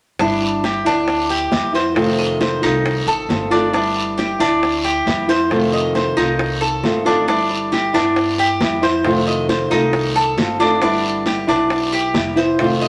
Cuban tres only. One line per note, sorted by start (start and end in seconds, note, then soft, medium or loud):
0.20 0.63 D4 medium
0.64 0.85 G4 medium
0.86 1.29 D4 medium
1.30 1.73 G4 medium
1.75 2.18 C5 medium
2.19 2.40 D#5 medium
2.41 2.62 C5 medium
2.63 3.06 D#4 medium
3.08 3.50 A4 medium
3.51 3.72 D4 medium
3.74 4.17 D4 medium
4.18 4.39 G4 medium
4.40 4.83 D4 medium
4.84 5.27 G4 medium
5.29 5.72 C5 medium
5.73 5.94 D#5 medium
5.95 6.17 C5 medium
6.17 6.60 D#4 medium
6.61 7.04 A4 medium
7.06 7.27 D4 medium
7.28 7.71 D4 medium
7.72 7.94 G4 medium
7.94 8.37 D4 medium
8.39 8.82 G4 medium
8.83 9.26 C5 medium
9.27 9.49 D#5 medium
9.49 9.71 C5 medium
9.71 10.14 D#4 medium
10.16 10.59 A4 medium
10.60 10.81 D4 medium
10.82 11.25 D4 medium
11.27 11.48 G4 medium
11.49 11.92 D4 medium
11.93 12.36 G4 medium
12.37 12.80 C5 medium
12.81 12.88 D#5 medium